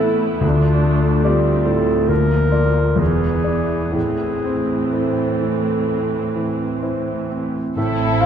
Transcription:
Already playing: cello section A2, grand piano E3 E4 E5, viola section E4, clarinet A4
0.00 grand piano A3, viola section B3
0.41 grand piano D2, cello section D2, double bass section D2, viola section A3 D4, clarinet F4
0.84 grand piano A3
1.24 viola section G3 C4, grand piano F4 D5, clarinet G4
1.65 grand piano A2, clarinet A4
2.08 grand piano D2, viola section F3 A#3, clarinet A#4
2.51 viola section F3, grand piano F4 D5
2.96 double bass section E1, grand piano E2, cello section E2, viola section E3 B3, clarinet G#4
3.44 viola section B3, grand piano E4 D5
3.92 double bass section A1, grand piano A2, cello section A2, viola section E3 C4, clarinet G#4
4.44 grand piano C4
4.93 grand piano E4 C5, clarinet A4
5.41 grand piano E3
5.87 grand piano C4
6.36 grand piano E3
6.82 grand piano E4 C5
7.32 grand piano C4
7.76 double bass section A1, cello section A2, timpani A2, grand piano A2, viola section C4, violin section E4 A4, clarinet C5, oboe E5
8.20 grand piano C4 F4 F5, flute F5

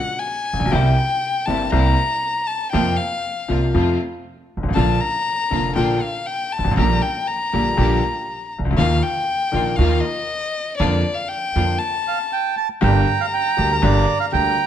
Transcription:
Already playing: violin F#5
0.19 violin G#5
0.53 upright bass A1, upright piano A1
0.60 upright piano A#1, upright bass A#1
0.65 upright piano B1, upright bass B1
0.71 upright piano C2 C3 G3 A#3 E4, upright bass C2, string section A#3 C4 E4, violin G5
1.46 upright piano G1 G2 C3 G3 A#3 E4, upright bass G1, string section A#3 C4 E4, violin A5
1.71 upright piano C2 C3 G3 A#3 E4, upright bass C2, string section A#3 C4 E4, violin A#5
2.47 violin A5
2.72 upright piano F2 C3 F3 A#3 F4, upright bass F2, string section A#3 C4 F4, violin G5
2.97 violin F5
3.48 upright piano C2 C3 F3 A#3 F4, upright bass C2, string section A#3 C4 F4
3.74 upright piano F2 C3 F3 A3 F4, upright bass F2, string section A3 C4 F4
4.57 upright bass G1, upright piano G1
4.63 upright piano G#1, upright bass G#1
4.69 upright piano A1, upright bass A1
4.74 upright piano A#1 A#2 D3 F3 A#3 F4, upright bass A#1, string section A#3 D4 F4, violin A5
5.00 violin A#5
5.50 upright piano F1 F2 D3 F3 A#3 F4, upright bass F1, string section A#3 D4 F4
5.75 upright piano A#1 A#2 D3 F3 A#3 F4, upright bass A#1, string section A#3 D4 F4, violin G5
6.01 violin F5
6.26 violin G5
6.52 violin A5
6.59 upright piano G1, upright bass G1
6.65 upright piano G#1, upright bass G#1
6.71 upright piano A1, upright bass A1
6.77 upright bass A#1, upright piano A#1 A#2 D3 G3 A#3 G4, string section A#3 D4 G4, violin A#5
7.02 violin G5
7.27 violin A#5
7.52 upright piano A#1 A#2 D3 G3 A#3 G4, upright bass A#1, string section A#3 D4 G4
7.77 upright piano A#1 A#2 D3 G3 A#3 G4, upright bass A#1, string section A#3 D4 G4
8.59 upright piano C2, upright bass C2
8.65 upright piano C#2, upright bass C#2
8.71 upright piano D2, upright bass D2
8.77 upright piano D#2 D#3 F3 A#3 F4, upright bass D#2, string section A#3 D#4 F4, violin F5
9.03 violin G5
9.52 upright piano A#1 A#2 D#3 F3 A#3 F4, upright bass A#1, string section A#3 D#4 F4
9.76 upright bass D#2, upright piano D#2 D#3 F3 A#3 F4, string section A#3 D#4 F4, violin F5
10.01 violin D#5
10.77 upright piano F2 D3 F3 A#3 F4, upright bass F2, string section A#3 D4 F4, violin D5
11.14 violin F5
11.28 violin G5
11.55 upright bass F2, upright piano F2 D3 F3 A#3 F4, string section A#3 D4 F4
11.79 violin A5
12.08 bandoneon F5
12.33 bandoneon G5
12.57 bandoneon A5
12.81 upright piano G1 G2 D3 G3 A#3 G4, upright bass G1, bandoneon G5, violin A#5
13.21 bandoneon F5
13.33 bandoneon G5
13.57 upright piano D2 D3 G3 A#3 G4, upright bass D2
13.71 bandoneon A#4
13.82 upright piano G1 G2 D3 G3 A#3 G4, upright bass G1, bandoneon D5
14.20 bandoneon F5
14.32 upright piano D2 D3 G3 A#3 G4, upright bass D2, bandoneon G5, violin A#5

